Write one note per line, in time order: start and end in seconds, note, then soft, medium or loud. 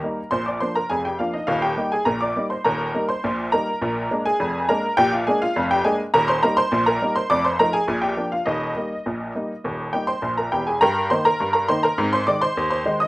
0.00 0.19 G3 soft
0.00 0.20 A#3 soft
0.00 0.20 D#4 soft
0.00 0.29 A#4 medium
0.00 0.28 A#5 medium
0.31 0.57 A#1 medium
0.31 0.57 A#2 medium
0.31 0.46 C5 medium
0.31 0.46 C6 medium
0.46 0.61 D5 medium
0.46 0.61 D6 medium
0.60 0.77 F3 soft
0.60 0.78 A#3 soft
0.60 0.78 D4 soft
0.60 0.75 C5 medium
0.60 0.76 C6 medium
0.75 0.90 A#4 soft
0.75 0.91 A#5 medium
0.90 1.16 F1 soft
0.90 1.16 F2 soft
0.90 1.05 G#4 soft
0.90 1.05 G#5 medium
1.05 1.19 G4 soft
1.05 1.20 G5 medium
1.19 1.36 F3 soft
1.19 1.36 A#3 soft
1.19 1.36 D4 soft
1.19 1.34 F4 soft
1.19 1.34 F5 medium
1.34 1.48 D#4 soft
1.34 1.49 D#5 medium
1.47 1.73 D#1 medium
1.47 1.73 D#2 medium
1.47 1.62 F4 medium
1.47 1.63 F5 medium
1.62 1.91 G4 medium
1.62 1.91 G5 medium
1.77 1.93 G3 soft
1.77 1.94 A#3 soft
1.77 1.94 D#4 soft
1.92 2.07 G#4 medium
1.92 2.07 G#5 medium
2.05 2.31 A#1 medium
2.05 2.31 A#2 medium
2.05 2.21 A#4 medium
2.05 2.21 A#5 medium
2.21 2.49 D5 medium
2.21 2.44 D6 medium
2.36 2.52 G3 soft
2.36 2.52 A#3 soft
2.36 2.53 D#4 soft
2.50 2.65 C5 soft
2.50 2.65 C6 medium
2.64 2.90 D#1 medium
2.64 2.90 D#2 medium
2.64 3.06 A#4 medium
2.64 3.06 A#5 medium
2.94 3.10 G3 soft
2.94 3.11 A#3 soft
2.94 3.11 D#4 soft
3.09 3.50 C5 medium
3.09 3.44 C6 medium
3.24 3.49 A#1 medium
3.24 3.49 A#2 medium
3.52 3.69 G3 soft
3.52 3.69 A#3 soft
3.52 3.69 D#4 soft
3.52 4.22 A#4 medium
3.52 4.21 A#5 medium
3.82 4.06 A#1 medium
3.82 4.07 A#2 medium
4.11 4.27 G#3 soft
4.11 4.27 A#3 soft
4.11 4.28 D4 soft
4.26 4.67 G#4 medium
4.26 4.67 G#5 medium
4.40 4.65 F1 medium
4.40 4.65 F2 medium
4.69 4.85 G#3 medium
4.69 4.85 A#3 soft
4.69 4.85 D4 soft
4.69 4.96 A#4 medium
4.69 4.92 A#5 medium
4.97 5.22 A#1 medium
4.97 5.23 A#2 medium
4.97 5.12 G4 medium
4.97 5.12 G5 loud
5.12 5.26 F4 medium
5.12 5.27 F5 medium
5.27 5.43 G#3 soft
5.27 5.44 A#3 soft
5.27 5.44 D4 medium
5.27 5.41 G#4 medium
5.27 5.41 G#5 medium
5.42 5.69 F4 medium
5.42 5.65 F5 medium
5.56 5.81 F1 medium
5.56 5.81 F2 medium
5.71 5.85 G4 medium
5.71 5.85 G5 medium
5.84 6.01 G#3 soft
5.84 6.01 A#3 soft
5.84 6.01 D4 medium
5.84 5.99 G#4 medium
5.84 5.99 G#5 medium
6.14 6.38 D#1 medium
6.14 6.38 D#2 medium
6.14 6.28 A#4 medium
6.14 6.28 A#5 loud
6.28 6.42 C5 medium
6.28 6.43 C6 medium
6.43 6.59 G3 medium
6.43 6.59 A#3 soft
6.43 6.60 D#4 medium
6.43 6.57 A#4 medium
6.43 6.57 A#5 medium
6.57 6.85 C5 medium
6.57 6.85 C6 loud
6.72 6.97 A#1 medium
6.72 6.96 A#2 medium
6.86 7.14 A#4 medium
6.86 7.14 A#5 medium
7.02 7.17 G3 soft
7.02 7.18 A#3 soft
7.02 7.18 D#4 medium
7.16 7.30 C5 medium
7.16 7.30 C6 medium
7.30 7.55 F1 medium
7.30 7.55 F2 medium
7.30 7.44 D5 medium
7.30 7.44 D6 loud
7.45 7.59 C5 medium
7.45 7.59 C6 medium
7.59 7.75 F3 medium
7.59 7.76 A3 soft
7.59 7.76 D#4 medium
7.59 7.73 A#4 medium
7.59 7.74 A#5 medium
7.73 8.01 G#4 medium
7.73 7.97 G#5 medium
7.88 8.13 A#1 medium
7.88 8.13 A#2 medium
8.02 8.30 G4 medium
8.02 8.25 G5 medium
8.17 8.33 F3 soft
8.17 8.33 A#3 soft
8.17 8.34 D4 medium
8.32 8.46 F4 soft
8.32 8.47 F5 medium
8.46 8.71 D#1 medium
8.46 8.72 D#2 medium
8.46 8.75 D#4 medium
8.46 10.19 D#5 medium
8.76 8.92 G3 soft
8.76 8.93 A#3 soft
8.76 8.93 D#4 soft
9.06 9.31 A#1 medium
9.06 9.31 A#2 medium
9.35 9.51 G3 soft
9.35 9.52 A#3 soft
9.35 9.52 D#4 soft
9.64 9.89 D#1 medium
9.64 9.89 D#2 medium
9.93 10.10 G3 soft
9.93 10.10 A#3 soft
9.93 10.10 D#4 soft
9.93 10.08 G4 soft
9.93 10.08 G5 medium
10.07 10.36 C5 medium
10.07 10.36 C6 medium
10.22 10.48 A#1 medium
10.22 10.47 A#2 medium
10.37 10.52 A#4 soft
10.37 10.52 A#5 medium
10.52 10.76 E1 medium
10.52 10.76 E2 medium
10.52 10.66 G4 soft
10.52 10.67 G5 medium
10.67 10.81 G#4 soft
10.67 10.82 G#5 medium
10.81 11.07 G2 medium
10.81 11.09 A#4 medium
10.81 11.09 G5 medium
10.81 11.09 A#5 loud
11.10 11.27 D#3 medium
11.10 11.27 A#3 soft
11.10 11.27 D#4 soft
11.10 11.25 C5 medium
11.10 11.25 C6 medium
11.25 11.53 A#4 medium
11.25 11.49 A#5 medium
11.40 11.65 G2 medium
11.53 11.68 A#4 medium
11.53 11.68 A#5 medium
11.68 11.85 D#3 medium
11.68 11.85 A#3 soft
11.68 11.86 D#4 medium
11.68 11.83 C5 medium
11.68 11.83 C6 medium
11.83 12.11 A#4 medium
11.83 12.11 A#5 medium
11.98 12.23 G#2 medium
11.98 12.16 C4 medium
12.13 12.27 C5 medium
12.13 12.27 C6 medium
12.27 12.43 D#3 soft
12.27 12.44 G#3 soft
12.27 12.44 D#4 medium
12.27 12.41 D5 medium
12.27 12.42 D6 medium
12.41 12.69 C5 medium
12.41 12.69 C6 loud
12.57 12.82 D#2 medium
12.70 12.98 C5 medium
12.70 12.98 C6 medium
12.85 13.01 D#3 medium
12.85 13.02 G#3 medium
12.85 13.02 D#4 medium
13.00 13.07 D#5 medium
13.00 13.07 D#6 medium